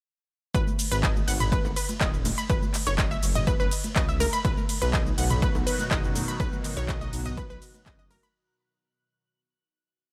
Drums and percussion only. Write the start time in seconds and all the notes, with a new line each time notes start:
0.55 kick, closed hi-hat, shaker
0.67 high conga, shaker
0.79 open hi-hat, ride, shaker
0.92 closed hi-hat, shaker
1.03 kick, clap, closed hi-hat, shaker
1.16 high conga, shaker
1.28 open hi-hat, ride, shaker
1.40 closed hi-hat, mid tom, shaker
1.52 kick, closed hi-hat, high conga, shaker
1.65 high bongo, shaker
1.76 open hi-hat, ride, shaker
1.89 closed hi-hat, high conga, shaker
2.01 kick, clap, closed hi-hat, shaker
2.14 shaker
2.25 open hi-hat, ride, high bongo, high conga, shaker
2.38 closed hi-hat, shaker
2.50 kick, closed hi-hat, shaker
2.62 high conga, shaker
2.74 clap, open hi-hat, ride, shaker
2.87 closed hi-hat, high bongo, shaker
2.98 kick, clap, closed hi-hat, shaker
3.11 high conga, shaker
3.23 open hi-hat, ride, shaker
3.35 closed hi-hat, mid tom, shaker
3.47 kick, closed hi-hat, high conga, shaker
3.60 shaker
3.71 open hi-hat, ride, shaker
3.84 closed hi-hat, high conga, shaker
3.96 kick, clap, closed hi-hat, shaker
4.09 shaker
4.20 open hi-hat, ride, high bongo, high conga, shaker
4.33 closed hi-hat, shaker
4.45 kick, closed hi-hat, shaker
4.57 high conga, shaker
4.69 open hi-hat, ride, shaker
4.82 closed hi-hat, shaker
4.94 kick, clap, closed hi-hat, shaker
5.06 high conga, shaker
5.18 open hi-hat, ride, shaker
5.31 closed hi-hat, mid tom, shaker
5.42 kick, closed hi-hat, high conga, shaker
5.55 high bongo, shaker
5.67 open hi-hat, ride, shaker
5.79 closed hi-hat, high conga, shaker
5.91 kick, clap, closed hi-hat, shaker
6.04 shaker
6.15 open hi-hat, ride, high bongo, high conga, shaker
6.28 closed hi-hat, shaker
6.40 kick, closed hi-hat, shaker
6.52 high conga, shaker
6.64 clap, open hi-hat, ride, shaker
6.77 closed hi-hat, high bongo, shaker
6.89 kick, clap, closed hi-hat, shaker
7.01 high conga, shaker
7.13 open hi-hat, ride, shaker
7.26 closed hi-hat, mid tom, shaker
7.37 kick, closed hi-hat, high conga, shaker
7.50 shaker
7.62 open hi-hat, ride, shaker
7.74 closed hi-hat, high conga, shaker
7.86 kick, clap, closed hi-hat, shaker
7.99 shaker
8.11 open hi-hat, ride, high bongo, high conga, shaker
8.23 closed hi-hat, shaker